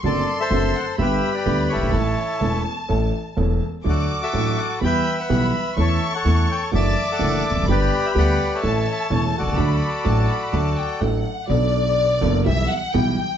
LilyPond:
<<
  \new Staff \with { instrumentName = "Violin section" } { \time 4/4 \key d \major \tempo 4 = 125 c'''2 b''2 | a''2.~ a''8 r8 | d'''2 b''4 b''4 | cis'''2 d'''2 |
b''2 a''2 | b''4 a''8 b''8 a''8 g''8 fis''4 | \key b \minor d''2 e''8 fis''8 g''4 | }
  \new Staff \with { instrumentName = "Bandoneon" } { \time 4/4 \key d \major << { d''8. e''8. fis''8 e''8. d''8. cis''8~ | cis''4. r2 r8 | d''8. e''8. fis''8 g''8. fis''8. r8 | e''8. fis''8. g''8 a''8. fis''8. r8 |
d''8. e''16 fis''8. e''8. e''8 cis''8 d''8~ | d''2. r4 | \key b \minor r1 | } \\ { a'8. <a' c''>4~ <a' c''>16 <g' b'>8. <g' b'>8. <e' a'>8~ | <e' a'>4. r2 r8 | <fis' a'>8. a'4~ a'16 <b' e''>8. b'4~ b'16 | <a' cis''>8. <a' cis''>4~ <a' cis''>16 <d'' e''>8. <a' d''>4~ <a' d''>16 |
<g' b'>4 <b' d''>8. <a' cis''>4.~ <a' cis''>16 <fis' a'>8~ | <fis' a'>2. r4 | r1 | } >> }
  \new Staff \with { instrumentName = "Grand piano" } { \clef bass \time 4/4 \key d \major <fis, d fis a c' fis'>8 r8 <fis, d fis a c' fis'>8 r8 <g,, g, d g b g'>8 r8 <d, d g b g'>8 r32 fis,,32 g,,32 gis,,32 | <a,, a, e a cis' a'>8 r8 <e,, e, e a cis' a'>8 r8 <a,, a, e a cis' a'>8 r8 <e,, e, e a cis' a'>8 r8 | <d, d fis a d' a'>8 r8 <a,, a, fis a d' a'>8 r8 <e, e g b g'>8 r8 <b,, b, e g b g'>8 r8 | <e, e a cis' a'>8 r8 <e, e a cis' a'>8 r8 <fis, e fis a d' fis'>8 r8 <fis, e fis a d' fis'>8 r32 e,32 f,32 fis,32 |
<g,, g, d g b g'>8 r8 <d, d g b g'>8 r8 <a,, a, e a cis' a'>8 r8 <e,, e, e a cis' a'>8 r32 b,,32 c,32 cis,32 | <d, d fis a d' a'>8 r8 <a,, a, fis a d' a'>8 r8 <d, d fis a d' a'>8 r8 <a,, a, fis a d' a'>8 r8 | \key b \minor <b,, b, fis b d' a'>4. <fis,, fis, fis b d' a'>8 <b,, b, e g b g'>8 r8 <b,, b, e g b g'>8 r8 | }
  \new Staff \with { instrumentName = "Upright bass" } { \clef bass \time 4/4 \key d \major fis,,16. r8 r32 fis,,16. r8 r32 g,,16. r8 r32 d,16. r16 fis,,32 g,,32 gis,,32 | a,,16. r8 r32 e,,16. r8 r32 a,,16. r8 r32 e,,16. r8 r32 | d,16. r8 r32 a,,16. r8 r32 e,16. r8 r32 b,,16. r8 r32 | e,16. r8 r32 e,16. r8 r32 fis,,16. r8 r32 fis,,16. r16 e,,32 f,,32 fis,,32 |
g,,16. r8 r32 d,16. r8 r32 a,,16. r8 r32 e,,16. r16 b,,32 c,32 cis,32 | d,16. r8 r32 a,,16. r8 r32 d,16. r8 r32 a,,16. r8 r32 | \key b \minor b,,4~ b,,16. r32 fis,,16. r32 b,,16. r8 r32 b,,16. r8 r32 | }
>>